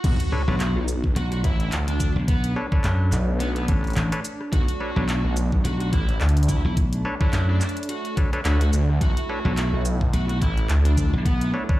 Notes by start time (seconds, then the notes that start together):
0.04 B1 A3 D4 F#4, kick, closed hi-hat, crash, impact
0.20 closed hi-hat
0.32 D4 A4 B4 C#5, cross-stick
0.48 B1 D4 A4 B4 C#5
0.60 clap, closed hi-hat
0.76 B1
0.88 closed hi-hat, shaker
1.04 kick
1.16 B1 F#4, cross-stick, closed hi-hat
1.32 F#4, closed hi-hat
1.44 A1 E4, kick, closed hi-hat
1.60 closed hi-hat
1.72 D2, clap, closed hi-hat
1.88 D4, closed hi-hat
2.00 kick, closed hi-hat, shaker
2.16 B1
2.28 B3, kick, closed hi-hat
2.44 closed hi-hat
2.56 D4 A4 B4 C#5, cross-stick
2.72 D4 A4 B4 C#5, kick
2.84 F#2, clap, closed hi-hat
3.12 B1, clap, closed hi-hat, shaker
3.40 B3, closed hi-hat
3.56 B3, closed hi-hat
3.68 A1 D4 A4 B4 C#5, kick, closed hi-hat
3.84 closed hi-hat
3.87 closed hi-hat
3.90 closed hi-hat
3.93 A1, clap, closed hi-hat
3.97 closed hi-hat
4.12 D4 A4 B4 C#5, closed hi-hat
4.25 closed hi-hat, shaker
4.41 cross-stick
4.53 B1 F#4, kick, closed hi-hat
4.68 closed hi-hat
4.80 D4 A4 B4 C#5, cross-stick
4.96 B1 D4 A4 B4 C#5
5.09 clap, closed hi-hat
5.24 B1
5.37 closed hi-hat, shaker
5.52 kick
5.65 B1 F#4, cross-stick, closed hi-hat
5.80 F#4, closed hi-hat
5.93 A1 E4, kick, closed hi-hat
6.09 closed hi-hat
6.21 D2, clap, closed hi-hat
6.29 closed hi-hat
6.37 closed hi-hat
6.43 closed hi-hat
6.49 E4, kick, closed hi-hat, shaker
6.65 B1 E4
6.77 kick, closed hi-hat
6.93 closed hi-hat
7.05 D4 A4 B4 C#5, cross-stick
7.21 D4 E4 A4 B4 C#5, kick
7.33 F#2 E4, clap, closed hi-hat
7.49 D4
7.61 clap, closed hi-hat, shaker
7.69 closed hi-hat
7.77 closed hi-hat
7.83 closed hi-hat
7.89 F#4, closed hi-hat
8.05 closed hi-hat
8.17 D4 A4 B4 C#5, kick, closed hi-hat
8.33 D4 A4 B4 C#5, closed hi-hat
8.45 D2 D4 F#4 A4 B4 C#5, clap, closed hi-hat
8.61 F#4, closed hi-hat
8.73 D2, closed hi-hat, shaker
8.89 cross-stick
9.01 B1 E4 F#4, kick, closed hi-hat
9.17 closed hi-hat
9.29 D4 A4 B4 C#5, cross-stick
9.45 B1 D4 A4 B4 C#5
9.57 clap, closed hi-hat
9.73 B1
9.85 closed hi-hat, shaker
10.01 kick
10.13 B1 F#4, cross-stick, closed hi-hat
10.29 F#4, closed hi-hat
10.41 A1 E4, kick, closed hi-hat
10.57 closed hi-hat
10.69 D2, clap, closed hi-hat
10.85 D4, closed hi-hat
10.98 kick, closed hi-hat, shaker
11.13 B1
11.26 B3, kick, closed hi-hat
11.41 closed hi-hat
11.54 D4 A4 B4 C#5, cross-stick
11.69 D4 A4 B4 C#5, kick